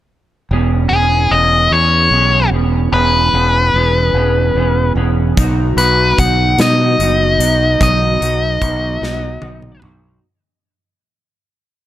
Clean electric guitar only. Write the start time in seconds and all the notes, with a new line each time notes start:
0.52 E3 B3 C#4 G#4
0.93 E3 B3 C#4 G#4
1.32 E3 B3 C#4 G#4
1.72 E3 B3 C#4 G#4
2.12 E3 B3 C#4 G#4
2.53 E3 B3 C#4 G#4
2.94 E3 B3 C#4 G#4
3.35 E3 B3 C#4 G#4
3.75 E3 B3 C#4 G#4
4.15 E3 B3 C#4 G#4
4.56 E3 B3 C#4 G#4
4.97 E3 B3 C#4 G#4
5.38 F#3 B3 D#4 F#4
5.79 F#3 B3 D#4 F#4
6.19 F#3 B3 D#4 F#4
6.60 F#3 B3 D#4 F#4
6.99 F#3 B3 D#4 F#4
7.41 F#3 B3 D#4 F#4
7.80 F#3 B3 D#4 F#4
8.21 F#3 B3 D#4 F#4
8.61 F#3 B3 D#4 F#4
9.01 F#3 B3 D#4 F#4
9.42 F#3 B3 D#4 F#4
9.83 F#3 B3 D#4 F#4